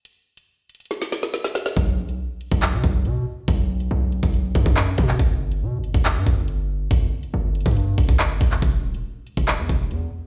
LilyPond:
<<
  \new Staff \with { instrumentName = "808-style bass" } { \clef bass \time 4/4 \key e \dorian \tempo 4 = 140 r1 | b,,8 ais,,16 b,,16 r8. b,,8 b,16 b,,8 b,8 r8 | b,,4 b,,8. b,,8. fis,16 fis,8. b,8 | g,,4 b,16. g,,16. g,,8 g,16 g,,4. |
g,,8 r8 g,,8. g,8. g,,16 g,,8. g,,8 | e,,8 d,,16 e,,16 r8. e,,8 e,16 e,,8 e,8 r8 | }
  \new DrumStaff \with { instrumentName = "Drums" } \drummode { \time 4/4 hh8. hh16 r8 hh32 hh32 hh32 hh32 <hh sn>16 sn16 <hh sn>32 hh32 <hh sn>32 hh32 sn16 sn16 <hh sn>16 sn16 | <hh bd>8. hh16 r8 hh16 bd16 <hc hh>8 <hh bd>8 hh4 | <hh bd>8. hh16 r8 hh16 <hh bd>16 hh8 <hh bd>16 <hh bd>16 hc8 <hh bd>16 hc16 | <hh bd>8. hh16 r8 hh16 bd16 <hc hh>8 <hh bd>8 hh4 |
<hh bd>8. hh16 r8 hh32 hh32 <hh bd>32 hh32 hh8 <hh bd>32 hh32 <hh bd>32 hh32 hc8 <hho bd>16 hc16 | <hh bd>8. hh16 r8 hh16 bd16 <hc hh>8 <hh bd>8 hh4 | }
>>